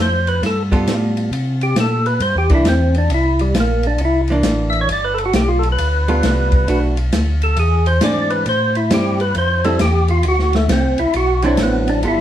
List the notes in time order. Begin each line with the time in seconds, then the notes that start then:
Already playing: F2
0.02 C5
0.27 B4, ride
0.42 G2, snare, ride
0.46 A4
0.72 G3 B3 F4 A4, kick, ride
0.86 A2, snare, hi-hat pedal, ride
1.17 ride
1.31 C3, ride
1.61 G4, ride
1.76 A#2, snare, hi-hat pedal, ride
1.80 A4
2.06 B4, ride
2.20 G2 C5, ride
2.35 E2 G4
2.49 C2 E3 A#3 D4, kick, ride
2.55 E4
2.64 E2, snare, hi-hat pedal, ride
2.69 C4
2.94 D4, ride
3.09 C2, ride
3.14 E4
3.39 G3, ride
3.54 A#1, snare, hi-hat pedal, ride
3.60 A#3
3.83 D4, ride
3.98 C2, ride
4.05 E4
4.28 E3 A#3, ride
4.32 D4
4.43 A1, snare, hi-hat pedal, ride
4.70 E5, ride
4.81 C#5
4.89 G1 D5, ride
5.04 B4
5.14 A4
5.18 ride
5.25 F#4
5.33 B1 G4, snare, hi-hat pedal, ride
5.48 F4
5.59 A4
5.63 ride
5.72 B4
5.78 D2, ride
6.08 G3 B3 F4 A4, ride
6.23 C2, snare, hi-hat pedal, ride
6.52 kick, ride
6.68 B1 A3 D4 F#4, ride
6.97 ride
7.12 D2, snare, hi-hat pedal, ride
7.42 A4, ride
7.57 E2 G#4, ride
7.86 C5, ride
8.01 G#2 E3 C4 D4 G#4 D5, snare, hi-hat pedal, ride
8.30 B4, ride
8.46 A2 C5, ride
8.75 E4, ride
8.90 G2 G3 C4 E4 G4, snare, hi-hat pedal, ride
9.20 B4, ride
9.35 F2 C5, ride
9.64 G3 C4 E4 A4, ride
9.79 E2 G4, snare, hi-hat pedal, ride
10.08 F4, ride
10.23 D2, ride
10.28 F#4
10.39 snare
10.53 A3, snare, ride
10.68 C2 C4, snare, hi-hat pedal, ride
10.98 C2 E4, ride
11.13 B1 F#4, ride
11.42 D3 F#3 C4 D4 E4, ride
11.57 A1, snare, hi-hat pedal, ride
11.63 B3
11.88 D4, ride
12.03 G1 G3 B3 F4 A4, ride
12.08 E4